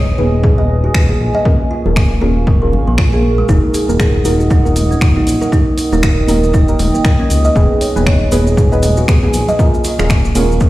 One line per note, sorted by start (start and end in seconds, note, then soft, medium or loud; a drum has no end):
0.00 0.13 D#1 loud
0.00 1.43 B4 medium
0.00 1.43 D#5 medium
0.00 3.45 G#5 medium
0.00 1.42 D#6 medium
0.18 0.89 D#1 medium
0.18 0.30 B3 medium
0.18 0.30 D#4 medium
0.18 0.26 G#4 medium
0.18 0.30 G#4 medium
0.18 0.30 B4 loud
0.18 high conga loud
0.43 0.57 G#4 loud
0.43 kick loud
0.58 0.92 B3 loud
0.58 0.92 D#4 medium
0.58 0.92 G#4 medium
0.58 0.92 B4 loud
0.58 0.69 D#5 medium
0.84 0.94 F#4 medium
0.94 1.13 D#1 loud
0.94 1.43 B3 medium
0.94 1.43 D#4 medium
0.94 1.43 G#4 medium
0.94 1.43 B4 medium
0.94 finger snap loud
0.94 kick loud
1.09 1.19 G#4 medium
1.09 high conga medium
1.20 1.30 A#1 medium
1.34 1.41 D#5 loud
1.34 low conga medium
1.45 1.59 A#3 loud
1.45 1.82 C#4 loud
1.45 1.82 F4 medium
1.45 1.82 G#4 medium
1.45 1.82 A#4 loud
1.45 5.48 A#4 medium
1.45 3.47 F5 medium
1.45 3.47 C#6 medium
1.45 kick loud
1.71 1.84 F4 medium
1.85 2.16 D#1 loud
1.85 1.94 C#4 medium
1.85 1.94 F4 medium
1.85 1.94 G#4 medium
1.85 1.94 A#4 loud
1.85 low conga medium
1.96 2.10 A#3 loud
1.96 finger snap loud
1.96 kick loud
2.21 2.74 D#1 medium
2.21 2.34 C#4 medium
2.21 2.34 F4 medium
2.21 2.35 F4 medium
2.21 2.34 G#4 medium
2.21 2.34 A#4 loud
2.21 high conga loud
2.47 2.61 A#3 loud
2.47 kick loud
2.62 2.72 F3 medium
2.62 2.96 C#4 medium
2.62 2.96 F4 medium
2.62 2.96 G#4 medium
2.62 2.96 A#4 loud
2.72 2.83 G#1 medium
2.72 high conga medium
2.72 low conga medium
2.87 3.43 A#1 loud
2.87 2.97 F3 medium
2.87 high conga medium
2.98 3.46 C#4 medium
2.98 3.46 F4 medium
2.98 3.46 G#4 medium
2.98 3.46 A#4 medium
2.98 finger snap loud
2.98 kick loud
3.12 3.23 G#4 loud
3.12 high conga medium
3.22 high conga medium
3.38 3.48 G#3 medium
3.49 3.59 D#1 loud
3.49 3.86 A#3 medium
3.49 3.86 D#4 medium
3.49 3.62 D#4 loud
3.49 3.86 F#4 medium
3.49 3.86 A#4 loud
3.49 5.50 D#5 medium
3.49 5.50 F#5 medium
3.49 5.50 D#6 medium
3.49 kick loud
3.49 maracas medium
3.74 3.89 G#4 medium
3.74 open hi-hat medium
3.74 maracas medium
3.89 4.20 D#1 loud
3.89 3.98 A#3 medium
3.89 3.98 D#4 medium
3.89 3.98 F#4 medium
3.89 3.98 A#4 loud
3.89 high conga medium
3.89 low conga medium
3.89 maracas soft
4.00 4.08 G#4 loud
4.00 finger snap loud
4.00 kick loud
4.00 maracas medium
4.25 4.96 D#1 medium
4.25 4.37 A#3 medium
4.25 4.33 D#4 medium
4.25 4.37 D#4 medium
4.25 4.37 F#4 medium
4.25 4.37 A#4 loud
4.25 open hi-hat medium
4.25 high conga loud
4.25 maracas loud
4.40 maracas soft
4.50 4.64 D#4 medium
4.50 kick loud
4.50 maracas soft
4.65 4.99 A#3 medium
4.65 4.99 D#4 medium
4.65 4.99 F#4 medium
4.65 4.99 A#4 loud
4.65 4.75 A#4 medium
4.65 maracas soft
4.76 mid tom medium
4.76 open hi-hat medium
4.76 maracas loud
4.91 5.00 C#4 medium
4.91 maracas soft
5.01 5.20 D#1 loud
5.01 5.50 A#3 medium
5.01 5.50 D#4 medium
5.01 5.50 F#4 medium
5.01 5.50 A#4 medium
5.01 finger snap loud
5.01 kick loud
5.01 maracas medium
5.16 5.26 D#4 medium
5.16 mid tom medium
5.16 high conga medium
5.27 5.37 A#1 medium
5.27 open hi-hat medium
5.27 maracas loud
5.42 5.47 A#4 loud
5.42 low conga medium
5.42 maracas soft
5.52 5.89 A#3 loud
5.52 5.89 D#4 medium
5.52 5.66 D#4 loud
5.52 5.89 G4 medium
5.52 5.89 A#4 loud
5.52 7.54 A#4 medium
5.52 9.55 D#5 medium
5.52 7.54 G5 medium
5.52 7.54 D#6 medium
5.52 kick loud
5.52 maracas medium
5.78 5.91 A#4 medium
5.78 open hi-hat medium
5.78 maracas loud
5.92 6.23 D#1 loud
5.92 6.01 A#3 loud
5.92 6.02 D#4 medium
5.92 6.01 D#4 medium
5.92 6.01 G4 medium
5.92 6.01 A#4 loud
5.92 low conga loud
5.92 maracas soft
6.03 6.17 D#4 loud
6.03 finger snap loud
6.03 kick loud
6.03 maracas soft
6.27 6.74 D#1 medium
6.27 6.40 A#3 medium
6.27 6.40 D#4 medium
6.27 6.40 G4 medium
6.27 6.42 A#4 medium
6.27 6.40 A#4 loud
6.27 mid tom medium
6.27 open hi-hat medium
6.27 high conga loud
6.27 maracas medium
6.43 maracas soft
6.54 6.67 D#4 loud
6.54 kick loud
6.54 maracas medium
6.68 6.78 A#3 medium
6.68 7.02 A#3 loud
6.68 7.02 D#4 medium
6.68 7.02 G4 medium
6.68 7.02 A#4 loud
6.68 maracas soft
6.79 6.90 D#1 medium
6.79 mid tom medium
6.79 open hi-hat medium
6.79 high conga medium
6.79 low conga medium
6.79 maracas medium
6.94 7.04 A#4 medium
6.94 high conga medium
6.94 maracas soft
7.05 7.53 A#3 medium
7.05 7.53 D#4 medium
7.05 7.53 G4 medium
7.05 7.53 A#4 medium
7.05 finger snap loud
7.05 kick loud
7.05 maracas soft
7.19 7.29 C#4 loud
7.19 high conga medium
7.30 7.49 C#2 medium
7.30 open hi-hat medium
7.30 high conga medium
7.30 maracas medium
7.45 7.55 D#5 loud
7.45 maracas soft
7.55 7.66 D#1 loud
7.55 7.93 B3 medium
7.55 7.93 D#4 medium
7.55 7.69 G#4 loud
7.55 7.93 G#4 medium
7.55 9.57 B4 medium
7.55 7.93 B4 loud
7.55 10.70 G#5 medium
7.55 9.57 D#6 medium
7.55 kick loud
7.55 maracas soft
7.81 7.95 C#5 medium
7.81 open hi-hat medium
7.81 maracas medium
7.96 8.27 D#1 loud
7.96 8.04 B3 medium
7.96 8.04 D#4 medium
7.96 8.04 G#4 medium
7.96 8.04 B4 loud
7.96 high conga medium
7.96 low conga medium
7.96 maracas soft
8.07 8.15 C#5 loud
8.07 finger snap loud
8.07 kick loud
8.07 maracas soft
8.32 9.03 D#1 medium
8.32 8.44 B3 medium
8.32 8.44 D#4 medium
8.32 8.44 G#4 medium
8.32 8.40 G#4 medium
8.32 8.44 B4 loud
8.32 open hi-hat medium
8.32 high conga loud
8.32 maracas medium
8.47 maracas soft
8.57 8.71 G#4 loud
8.57 kick loud
8.57 maracas medium
8.72 9.06 B3 medium
8.72 9.06 D#4 medium
8.72 9.06 G#4 medium
8.72 9.06 B4 loud
8.72 8.82 D#5 medium
8.72 maracas soft
8.83 mid tom medium
8.83 open hi-hat medium
8.83 maracas medium
8.97 9.07 F#4 medium
8.97 maracas soft
9.08 9.27 D#1 medium
9.08 9.57 B3 medium
9.08 9.57 D#4 medium
9.08 9.57 G#4 medium
9.08 9.57 B4 medium
9.08 finger snap loud
9.08 kick loud
9.08 maracas soft
9.23 9.33 G#4 medium
9.23 mid tom medium
9.23 high conga medium
9.33 9.44 A#1 medium
9.33 open hi-hat medium
9.33 maracas medium
9.48 9.54 D#5 loud
9.48 low conga medium
9.48 maracas soft
9.59 9.73 A#3 loud
9.59 9.96 C#4 medium
9.59 9.96 F4 medium
9.59 9.96 G#4 medium
9.59 9.96 A#4 loud
9.59 10.70 A#4 medium
9.59 10.70 F5 medium
9.59 10.70 C#6 medium
9.59 kick loud
9.59 maracas soft
9.74 maracas soft
9.84 9.98 F4 medium
9.84 open hi-hat medium
9.84 maracas medium
9.99 10.30 D#1 loud
9.99 10.09 A#3 medium
9.99 10.08 C#4 medium
9.99 10.08 F4 medium
9.99 10.08 G#4 medium
9.99 10.08 A#4 loud
9.99 finger snap medium
9.99 low conga loud
9.99 maracas soft
10.09 10.23 A#3 loud
10.09 finger snap loud
10.09 kick loud
10.09 low conga medium
10.09 maracas medium
10.25 maracas soft
10.35 10.70 D#1 medium
10.35 10.47 C#4 medium
10.35 10.47 F4 medium
10.35 10.49 F4 medium
10.35 10.47 G#4 medium
10.35 10.47 A#4 loud
10.35 mid tom loud
10.35 open hi-hat medium
10.35 high conga loud
10.35 maracas medium
10.52 maracas soft
10.60 10.70 A#3 loud
10.60 kick loud
10.60 maracas soft